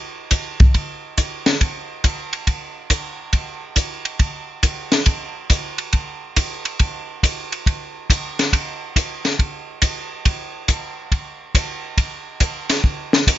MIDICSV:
0, 0, Header, 1, 2, 480
1, 0, Start_track
1, 0, Tempo, 431965
1, 1797, Time_signature, 4, 2, 24, 8
1, 14869, End_track
2, 0, Start_track
2, 0, Title_t, "Drums"
2, 342, Note_on_c, 9, 44, 59
2, 342, Note_on_c, 9, 51, 64
2, 350, Note_on_c, 9, 36, 19
2, 454, Note_off_c, 9, 44, 0
2, 454, Note_off_c, 9, 51, 0
2, 461, Note_off_c, 9, 36, 0
2, 665, Note_on_c, 9, 51, 42
2, 670, Note_on_c, 9, 36, 57
2, 776, Note_off_c, 9, 51, 0
2, 781, Note_off_c, 9, 36, 0
2, 827, Note_on_c, 9, 51, 49
2, 830, Note_on_c, 9, 36, 22
2, 938, Note_off_c, 9, 51, 0
2, 941, Note_off_c, 9, 36, 0
2, 1307, Note_on_c, 9, 44, 64
2, 1307, Note_on_c, 9, 51, 60
2, 1310, Note_on_c, 9, 36, 19
2, 1418, Note_off_c, 9, 44, 0
2, 1418, Note_off_c, 9, 51, 0
2, 1421, Note_off_c, 9, 36, 0
2, 1625, Note_on_c, 9, 51, 43
2, 1626, Note_on_c, 9, 38, 55
2, 1736, Note_off_c, 9, 51, 0
2, 1737, Note_off_c, 9, 38, 0
2, 1788, Note_on_c, 9, 51, 58
2, 1790, Note_on_c, 9, 36, 21
2, 1899, Note_off_c, 9, 51, 0
2, 1901, Note_off_c, 9, 36, 0
2, 2267, Note_on_c, 9, 44, 52
2, 2267, Note_on_c, 9, 51, 65
2, 2269, Note_on_c, 9, 36, 23
2, 2378, Note_off_c, 9, 44, 0
2, 2378, Note_off_c, 9, 51, 0
2, 2380, Note_off_c, 9, 36, 0
2, 2588, Note_on_c, 9, 51, 41
2, 2699, Note_off_c, 9, 51, 0
2, 2746, Note_on_c, 9, 51, 49
2, 2747, Note_on_c, 9, 36, 18
2, 2857, Note_off_c, 9, 51, 0
2, 2859, Note_off_c, 9, 36, 0
2, 3223, Note_on_c, 9, 44, 62
2, 3223, Note_on_c, 9, 51, 69
2, 3224, Note_on_c, 9, 36, 18
2, 3334, Note_off_c, 9, 44, 0
2, 3334, Note_off_c, 9, 51, 0
2, 3335, Note_off_c, 9, 36, 0
2, 3698, Note_on_c, 9, 51, 57
2, 3701, Note_on_c, 9, 36, 20
2, 3809, Note_off_c, 9, 51, 0
2, 3812, Note_off_c, 9, 36, 0
2, 4177, Note_on_c, 9, 44, 62
2, 4177, Note_on_c, 9, 51, 61
2, 4182, Note_on_c, 9, 36, 18
2, 4288, Note_off_c, 9, 44, 0
2, 4288, Note_off_c, 9, 51, 0
2, 4293, Note_off_c, 9, 36, 0
2, 4502, Note_on_c, 9, 51, 39
2, 4613, Note_off_c, 9, 51, 0
2, 4661, Note_on_c, 9, 51, 50
2, 4663, Note_on_c, 9, 36, 23
2, 4772, Note_off_c, 9, 51, 0
2, 4774, Note_off_c, 9, 36, 0
2, 5144, Note_on_c, 9, 44, 53
2, 5144, Note_on_c, 9, 51, 67
2, 5146, Note_on_c, 9, 36, 21
2, 5255, Note_off_c, 9, 44, 0
2, 5255, Note_off_c, 9, 51, 0
2, 5257, Note_off_c, 9, 36, 0
2, 5464, Note_on_c, 9, 51, 48
2, 5465, Note_on_c, 9, 38, 49
2, 5575, Note_off_c, 9, 51, 0
2, 5576, Note_off_c, 9, 38, 0
2, 5621, Note_on_c, 9, 51, 59
2, 5628, Note_on_c, 9, 36, 25
2, 5732, Note_off_c, 9, 51, 0
2, 5739, Note_off_c, 9, 36, 0
2, 6109, Note_on_c, 9, 44, 57
2, 6109, Note_on_c, 9, 51, 62
2, 6112, Note_on_c, 9, 36, 27
2, 6220, Note_off_c, 9, 44, 0
2, 6220, Note_off_c, 9, 51, 0
2, 6223, Note_off_c, 9, 36, 0
2, 6426, Note_on_c, 9, 51, 41
2, 6537, Note_off_c, 9, 51, 0
2, 6586, Note_on_c, 9, 51, 50
2, 6594, Note_on_c, 9, 36, 19
2, 6697, Note_off_c, 9, 51, 0
2, 6705, Note_off_c, 9, 36, 0
2, 7073, Note_on_c, 9, 44, 63
2, 7073, Note_on_c, 9, 51, 75
2, 7075, Note_on_c, 9, 36, 19
2, 7184, Note_off_c, 9, 44, 0
2, 7184, Note_off_c, 9, 51, 0
2, 7187, Note_off_c, 9, 36, 0
2, 7393, Note_on_c, 9, 51, 44
2, 7504, Note_off_c, 9, 51, 0
2, 7551, Note_on_c, 9, 51, 58
2, 7555, Note_on_c, 9, 36, 21
2, 7662, Note_off_c, 9, 51, 0
2, 7666, Note_off_c, 9, 36, 0
2, 8037, Note_on_c, 9, 36, 20
2, 8040, Note_on_c, 9, 44, 55
2, 8040, Note_on_c, 9, 51, 69
2, 8148, Note_off_c, 9, 36, 0
2, 8152, Note_off_c, 9, 44, 0
2, 8152, Note_off_c, 9, 51, 0
2, 8361, Note_on_c, 9, 51, 43
2, 8472, Note_off_c, 9, 51, 0
2, 8516, Note_on_c, 9, 36, 21
2, 8523, Note_on_c, 9, 51, 48
2, 8627, Note_off_c, 9, 36, 0
2, 8634, Note_off_c, 9, 51, 0
2, 8998, Note_on_c, 9, 36, 26
2, 9003, Note_on_c, 9, 44, 53
2, 9003, Note_on_c, 9, 51, 72
2, 9109, Note_off_c, 9, 36, 0
2, 9115, Note_off_c, 9, 44, 0
2, 9115, Note_off_c, 9, 51, 0
2, 9326, Note_on_c, 9, 51, 44
2, 9327, Note_on_c, 9, 38, 36
2, 9437, Note_off_c, 9, 51, 0
2, 9438, Note_off_c, 9, 38, 0
2, 9476, Note_on_c, 9, 36, 19
2, 9480, Note_on_c, 9, 51, 67
2, 9587, Note_off_c, 9, 36, 0
2, 9591, Note_off_c, 9, 51, 0
2, 9956, Note_on_c, 9, 36, 18
2, 9959, Note_on_c, 9, 44, 59
2, 9959, Note_on_c, 9, 51, 67
2, 10067, Note_off_c, 9, 36, 0
2, 10070, Note_off_c, 9, 44, 0
2, 10070, Note_off_c, 9, 51, 0
2, 10277, Note_on_c, 9, 51, 39
2, 10278, Note_on_c, 9, 38, 31
2, 10388, Note_off_c, 9, 51, 0
2, 10389, Note_off_c, 9, 38, 0
2, 10437, Note_on_c, 9, 36, 19
2, 10439, Note_on_c, 9, 51, 44
2, 10548, Note_off_c, 9, 36, 0
2, 10550, Note_off_c, 9, 51, 0
2, 10910, Note_on_c, 9, 44, 57
2, 10910, Note_on_c, 9, 51, 72
2, 10916, Note_on_c, 9, 36, 19
2, 11021, Note_off_c, 9, 44, 0
2, 11021, Note_off_c, 9, 51, 0
2, 11027, Note_off_c, 9, 36, 0
2, 11394, Note_on_c, 9, 51, 63
2, 11396, Note_on_c, 9, 36, 23
2, 11505, Note_off_c, 9, 51, 0
2, 11508, Note_off_c, 9, 36, 0
2, 11871, Note_on_c, 9, 44, 52
2, 11871, Note_on_c, 9, 51, 60
2, 11874, Note_on_c, 9, 36, 19
2, 11982, Note_off_c, 9, 44, 0
2, 11982, Note_off_c, 9, 51, 0
2, 11985, Note_off_c, 9, 36, 0
2, 12352, Note_on_c, 9, 36, 17
2, 12354, Note_on_c, 9, 51, 43
2, 12464, Note_off_c, 9, 36, 0
2, 12465, Note_off_c, 9, 51, 0
2, 12831, Note_on_c, 9, 36, 26
2, 12833, Note_on_c, 9, 44, 63
2, 12833, Note_on_c, 9, 51, 74
2, 12942, Note_off_c, 9, 36, 0
2, 12944, Note_off_c, 9, 44, 0
2, 12944, Note_off_c, 9, 51, 0
2, 13307, Note_on_c, 9, 36, 20
2, 13308, Note_on_c, 9, 51, 58
2, 13419, Note_off_c, 9, 36, 0
2, 13419, Note_off_c, 9, 51, 0
2, 13783, Note_on_c, 9, 44, 57
2, 13783, Note_on_c, 9, 51, 67
2, 13785, Note_on_c, 9, 36, 22
2, 13894, Note_off_c, 9, 44, 0
2, 13894, Note_off_c, 9, 51, 0
2, 13897, Note_off_c, 9, 36, 0
2, 14107, Note_on_c, 9, 51, 69
2, 14108, Note_on_c, 9, 38, 32
2, 14218, Note_off_c, 9, 51, 0
2, 14219, Note_off_c, 9, 38, 0
2, 14266, Note_on_c, 9, 36, 23
2, 14377, Note_off_c, 9, 36, 0
2, 14593, Note_on_c, 9, 38, 62
2, 14704, Note_off_c, 9, 38, 0
2, 14748, Note_on_c, 9, 36, 23
2, 14753, Note_on_c, 9, 44, 65
2, 14753, Note_on_c, 9, 51, 76
2, 14859, Note_off_c, 9, 36, 0
2, 14864, Note_off_c, 9, 44, 0
2, 14864, Note_off_c, 9, 51, 0
2, 14869, End_track
0, 0, End_of_file